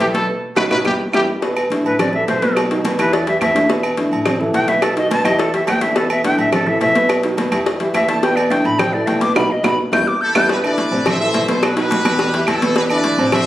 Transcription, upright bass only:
0.00 0.27 B1 medium
0.56 0.67 B1 loud
0.71 0.82 B1 loud
0.85 0.96 E2 loud
1.14 1.24 E2 medium
1.84 2.24 A1 medium
2.28 2.93 B1 medium
2.98 3.38 E2 medium
3.41 4.06 E2 loud
4.11 4.51 A1 loud
4.53 5.19 B1 medium
5.24 5.64 E2 medium
5.67 6.33 E2 medium
6.38 6.78 A1 medium
6.81 7.46 B1 medium
7.51 7.91 E2 medium
7.93 8.59 E2 loud
8.64 9.04 A1 loud
9.07 9.34 B1 medium
9.35 9.46 B1 loud
9.63 9.74 B1 loud
9.92 10.03 E2 loud
10.35 10.45 E2 loud
10.91 11.31 A1 medium
11.34 12.00 B1 medium
12.05 12.44 E2 medium
12.48 13.13 E2 medium
13.17 13.46 A1 medium

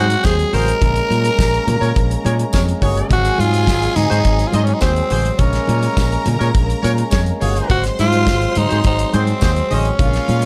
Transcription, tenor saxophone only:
0.00 0.27 F#4 loud
0.25 0.56 G#4 loud
0.54 2.25 A#4 loud
3.13 3.41 F#4 loud
3.40 3.98 F4 loud
3.96 4.49 D#4 loud
4.47 4.57 F4 medium
4.56 4.66 D#4 medium
4.64 4.75 C#4 medium
4.74 4.80 D#4 medium
4.81 5.40 C4 loud
5.39 6.54 C#4 medium
7.71 7.83 F#4 loud
8.00 8.59 F4 loud
8.57 8.85 D#4 loud
8.86 9.17 D#4 loud
9.16 9.75 C4 loud
9.74 10.45 C#4 medium

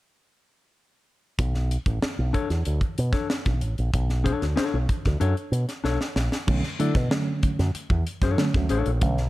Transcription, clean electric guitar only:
2.33 2.48 D4 medium
2.33 2.48 A4 medium
2.33 2.49 C#5 medium
3.12 3.28 D4 medium
3.12 3.27 A4 medium
3.12 3.27 C#5 medium
4.24 4.45 D4 medium
4.24 4.45 A4 medium
4.24 4.45 C#5 medium
4.56 4.77 D4 medium
4.56 4.77 A4 medium
4.56 4.77 C#5 medium
5.20 5.34 D4 medium
5.20 5.35 A4 medium
5.20 5.35 C#5 medium
5.84 5.98 D4 medium
5.84 5.99 A4 medium
5.84 5.99 C#5 medium
6.80 6.94 D4 medium
6.80 6.94 A4 medium
6.80 6.94 D5 medium
8.23 8.43 D4 medium
8.23 8.43 A4 medium
8.23 8.43 C#5 medium
8.69 8.90 D4 medium
8.69 8.90 A4 medium
8.69 8.91 C#5 medium

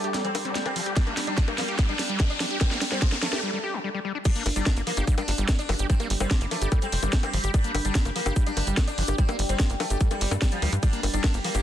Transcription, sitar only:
0.00 0.11 A3 medium
0.25 0.48 C4 loud
0.66 0.83 C4 loud
0.96 1.14 D4 loud
1.27 1.45 D4 medium
1.58 1.76 A#3 medium
1.89 2.12 D4 medium
2.30 2.48 D4 loud
2.61 2.78 C4 loud
2.92 3.09 C4 medium
3.22 3.40 A3 loud
4.25 4.43 D4 loud
4.56 4.74 D4 loud
4.87 5.04 A#3 medium
5.18 5.41 D4 medium
5.59 5.76 D4 loud
5.90 6.07 C4 loud
6.20 6.38 C4 medium
6.51 6.69 A3 loud
6.82 7.05 C4 loud
7.23 7.41 C4 medium
7.54 7.71 D4 loud
7.85 8.02 D4 medium
8.16 8.33 A#3 loud
8.46 8.70 D4 loud
8.88 9.05 D4 loud
9.18 9.36 C4 loud
9.49 9.67 C4 medium
9.80 9.97 A3 loud
10.11 10.34 G3 medium
10.52 10.69 F3 loud
10.83 11.00 D4 loud
11.14 11.31 D4 medium
11.44 11.62 A#3 loud

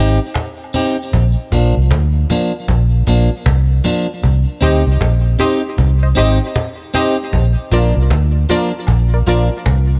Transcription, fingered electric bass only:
0.00 0.17 G#1 loud
1.14 1.34 A#1 loud
1.52 1.73 A#1 loud
1.77 1.89 C2 medium
1.91 2.24 D2 medium
2.69 3.02 A#1 loud
3.07 3.28 A#1 medium
3.46 3.79 C2 medium
4.24 4.44 C2 loud
4.62 4.83 D2 medium
4.87 4.99 C2 loud
5.01 5.34 A#1 medium
5.78 6.12 C2 loud
6.17 6.38 G#1 loud
7.34 7.54 A#1 loud
7.72 7.93 A#1 loud
7.97 8.09 C2 medium
8.11 8.44 D2 medium
8.88 9.22 A#1 loud
9.27 9.48 A#1 medium
9.66 10.00 C2 medium

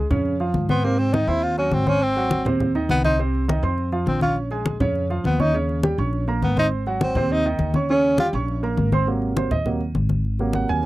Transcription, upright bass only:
0.10 0.51 F2 medium
0.54 1.22 G#2 medium
1.27 1.69 D#2 loud
1.72 2.40 G#1 medium
2.45 2.86 D#2 loud
2.89 3.58 C2 medium
3.63 4.04 F2 loud
4.06 4.75 A#1 medium
4.80 5.22 F2 loud
5.24 5.93 D#2 medium
5.98 6.39 A#1 loud
6.42 7.11 G#1 medium
7.15 7.57 D#2 loud
7.59 8.28 D#2 medium
8.33 8.74 A#1 loud
8.77 9.46 G#1 medium
9.51 9.92 D#2 medium
9.95 10.63 G#1 medium
10.69 10.86 D#2 medium

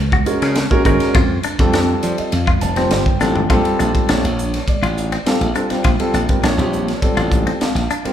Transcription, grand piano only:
0.26 0.53 G#3 medium
0.26 0.53 C#4 medium
0.26 0.53 F#4 medium
0.26 0.54 A#4 medium
0.70 0.79 G#3 medium
0.70 0.80 C#4 medium
0.70 0.80 F#4 medium
0.70 0.80 A#4 loud
0.85 1.15 G#3 medium
0.85 1.15 C#4 medium
0.85 1.15 F#4 medium
0.85 1.15 A#4 loud
1.59 2.30 G3 medium
1.59 2.30 C4 medium
1.59 2.30 F4 medium
1.59 2.30 A4 medium
2.03 2.17 D5 medium
2.19 2.32 D#5 medium
2.33 2.46 F5 medium
2.48 2.61 F5 medium
2.62 2.89 A5 medium
2.76 3.03 G3 medium
2.76 3.03 C4 medium
2.76 3.03 F4 medium
2.76 3.03 C5 medium
2.91 3.46 G5 medium
3.21 3.39 G3 medium
3.21 3.39 C4 medium
3.21 3.39 F4 medium
3.21 3.39 A4 medium
3.50 4.21 G3 medium
3.50 4.21 C4 medium
3.50 4.21 F4 medium
3.50 4.21 A4 loud
4.10 4.64 C#5 medium
4.69 5.23 D5 medium
5.25 5.44 G3 medium
5.25 5.44 C4 medium
5.25 5.44 F4 medium
5.25 5.44 A4 medium
5.25 5.81 F5 medium
5.55 5.64 G3 medium
5.55 5.64 C4 medium
5.55 5.64 F4 medium
5.55 5.65 A4 medium
5.70 5.88 G3 medium
5.70 5.88 C4 medium
5.70 5.88 F4 medium
5.70 5.88 C5 medium
6.00 6.17 G3 medium
6.00 6.17 C4 medium
6.00 6.17 F4 medium
6.00 6.17 A4 medium
6.29 6.46 G3 medium
6.29 6.46 C4 medium
6.29 6.47 F4 medium
6.29 6.47 A#4 medium
6.44 6.97 C#5 medium
6.58 6.85 G3 medium
6.58 6.85 C4 medium
6.58 6.85 F4 medium
6.58 6.85 G4 medium
6.98 7.64 G3 medium
6.98 7.64 C4 medium
6.98 7.64 F4 medium
6.98 7.64 A4 medium
6.98 7.02 C#5 soft
7.03 7.57 D5 medium
7.64 8.13 F5 medium
8.05 8.13 G3 medium
8.05 8.13 C4 medium
8.05 8.13 F4 medium
8.05 8.13 A#4 medium

